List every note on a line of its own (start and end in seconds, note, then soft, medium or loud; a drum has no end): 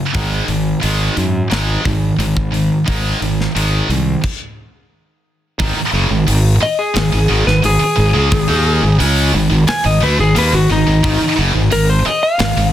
0.00 0.11 F#2 medium
0.00 0.11 C#3 medium
0.14 0.39 G#1 medium
0.14 0.46 G#2 medium
0.14 0.46 D#3 medium
0.14 0.47 G#3 medium
0.14 kick loud
0.14 open hi-hat medium
0.48 0.73 G#1 medium
0.48 0.79 G#2 medium
0.48 0.79 D#3 medium
0.48 open hi-hat soft
0.82 1.08 G#1 medium
0.82 1.14 G#2 medium
0.82 1.15 D#3 medium
0.82 1.15 G#3 medium
0.82 open hi-hat medium
1.16 1.42 F#2 medium
1.16 1.47 G#2 medium
1.16 1.47 D#3 medium
1.16 open hi-hat soft
1.50 1.76 G#1 medium
1.50 1.83 G#2 medium
1.50 1.83 D#3 medium
1.50 1.83 G#3 medium
1.50 snare loud
1.50 open hi-hat medium
1.85 2.10 G#1 medium
1.85 2.16 G#2 medium
1.85 2.16 D#3 medium
1.85 kick medium
1.85 open hi-hat soft
2.18 2.68 G#1 medium
2.18 2.50 G#2 medium
2.18 2.50 D#3 medium
2.18 open hi-hat medium
2.37 kick medium
2.52 2.83 G#2 medium
2.52 2.83 D#3 medium
2.52 open hi-hat soft
2.86 3.13 G#1 medium
2.86 3.19 G#2 medium
2.86 3.19 D#3 medium
2.86 3.19 G#3 loud
2.86 kick loud
2.86 open hi-hat medium
3.20 3.46 G#1 medium
3.20 3.52 G#2 medium
3.20 3.52 D#3 medium
3.20 open hi-hat soft
3.41 snare soft
3.55 3.80 G#1 medium
3.55 3.87 G#2 medium
3.55 3.88 D#3 medium
3.55 3.88 G#3 medium
3.55 open hi-hat medium
3.89 4.14 C2 medium
3.89 4.20 G#2 medium
3.89 4.21 D#3 medium
3.89 open hi-hat soft
4.24 kick medium
4.24 crash medium
5.60 5.76 G#1 loud
5.60 5.76 G#2 medium
5.60 5.76 D#3 loud
5.60 kick loud
5.60 open hi-hat medium
5.76 muted fingered electric bass stroke soft
5.76 muted distorted electric guitar stroke medium
5.93 6.09 F#1 medium
5.93 6.10 F#2 medium
5.93 6.10 C#3 loud
6.10 6.27 G#1 medium
6.10 6.26 G#2 medium
6.10 6.26 D#3 medium
6.27 6.60 G#1 medium
6.27 6.55 G#2 medium
6.27 6.55 D#3 medium
6.27 open hi-hat medium
6.61 6.79 D#5 loud
6.61 muted distorted electric guitar stroke medium
6.61 muted fingered electric bass stroke soft
6.79 7.45 G#4 medium
6.94 7.12 G#1 medium
6.94 7.11 G#2 medium
6.94 7.11 D#3 medium
6.94 snare loud
6.94 open hi-hat medium
7.12 7.29 G#1 medium
7.12 7.27 G#2 medium
7.12 7.28 D#3 medium
7.29 7.46 G#1 medium
7.29 7.45 G#2 medium
7.29 7.46 D#3 loud
7.46 7.63 G#1 medium
7.46 7.62 G#2 medium
7.46 7.62 D#3 medium
7.46 7.64 B4 medium
7.46 snare soft
7.63 7.80 G#1 medium
7.63 7.78 G#2 medium
7.63 7.81 D#3 medium
7.63 8.97 G#4 loud
7.63 open hi-hat medium
7.80 muted distorted electric guitar stroke medium
7.80 muted fingered electric bass stroke soft
7.96 8.14 G#1 medium
7.96 8.14 G#2 medium
7.96 8.13 D#3 medium
8.13 8.31 C#2 loud
8.13 8.30 C#3 medium
8.13 8.31 G#3 loud
8.31 8.48 G#1 medium
8.31 8.49 G#2 medium
8.31 8.47 D#3 medium
8.31 kick loud
8.31 open hi-hat medium
8.48 8.80 D#2 loud
8.48 8.82 D#3 loud
8.48 8.82 A#3 loud
8.48 8.82 D#4 loud
8.83 8.99 G#1 medium
8.83 9.00 G#2 medium
8.83 8.99 D#3 medium
8.99 9.32 C#2 loud
8.99 9.33 C#3 medium
8.99 9.33 G#3 loud
8.99 9.33 C#4 loud
8.99 open hi-hat medium
9.34 9.50 G#1 medium
9.34 9.49 G#2 medium
9.34 9.49 D#3 medium
9.50 9.67 G#1 medium
9.50 9.66 G#2 medium
9.50 9.68 D#3 medium
9.68 9.85 G#5 loud
9.68 muted distorted electric guitar stroke medium
9.68 muted fingered electric bass stroke soft
9.68 snare loud
9.68 open hi-hat medium
9.84 10.01 G#1 medium
9.84 10.02 G#2 medium
9.84 10.00 D#3 medium
9.84 10.02 D#5 medium
10.01 10.18 D2 loud
10.01 10.17 D3 loud
10.01 10.18 A3 loud
10.01 10.19 B4 medium
10.18 10.35 G#1 medium
10.18 10.35 G#2 medium
10.18 10.34 D#3 medium
10.18 10.36 G#4 medium
10.35 10.52 D#2 medium
10.35 10.52 D#3 medium
10.35 10.52 A#3 loud
10.35 10.54 B4 medium
10.35 open hi-hat medium
10.52 10.69 G#1 medium
10.52 10.68 G#2 medium
10.52 10.69 D#3 medium
10.52 10.70 F#4 medium
10.69 10.86 G#1 medium
10.69 10.86 G#2 medium
10.69 10.86 D#3 medium
10.69 11.37 D#4 loud
10.87 11.03 G#1 medium
10.87 11.02 G#2 medium
10.87 11.03 D#3 medium
11.03 11.20 G#1 loud
11.03 11.19 G#2 medium
11.03 11.20 D#3 loud
11.03 kick loud
11.03 open hi-hat medium
11.21 muted distorted electric guitar stroke medium
11.21 muted fingered electric bass stroke soft
11.37 11.54 F#1 loud
11.37 11.54 F#2 medium
11.37 11.54 C#3 loud
11.55 11.71 G#1 medium
11.55 11.70 G#2 medium
11.55 11.70 D#3 medium
11.71 12.04 G#1 medium
11.71 11.99 G#2 medium
11.71 11.99 D#3 medium
11.71 11.89 A#4 loud
11.71 open hi-hat medium
11.90 12.06 C5 medium
12.06 12.22 D#5 loud
12.06 muted distorted electric guitar stroke medium
12.06 muted fingered electric bass stroke soft
12.23 12.73 F5 loud
12.39 12.56 G#1 medium
12.39 12.55 G#2 medium
12.39 12.56 D#3 medium
12.39 snare loud
12.39 open hi-hat medium
12.57 12.73 G#1 medium
12.57 12.72 G#2 medium
12.57 12.73 D#3 medium